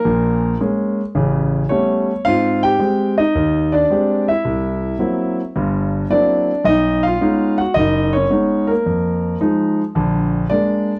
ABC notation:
X:1
M:4/4
L:1/8
Q:"Swing" 1/4=109
K:Cblyd
V:1 name="Grand piano"
[B,B]2 z4 ^c2 | [Ff] [=G=g]2 [Ee]2 [=D=d]2 [_F_f]- | [_F_f]3 z3 [=D=d]2 | [^D^d] [Ff]2 [^F^f] [Dd] [^C^c]2 [B,B]- |
[B,B]2 z4 =d2 |]
V:2 name="Grand piano" clef=bass
[B,,,B,,]2 [A,B,D] z [=A,,,^C,]2 [=G,=A,=B,^C] z | [A,,=C]2 [A,C=G] z E,,2 [A,CG] z | =C,,2 [^F,B,=C=E] z [=G,,,=G,,]2 [F,B,CE] z | =B,,,2 [^G,=B,^C^D] z ^F,,,2 [G,B,CD] z |
F,,2 [F,A,E] z [B,,,=D,]2 [A,B,=D] z |]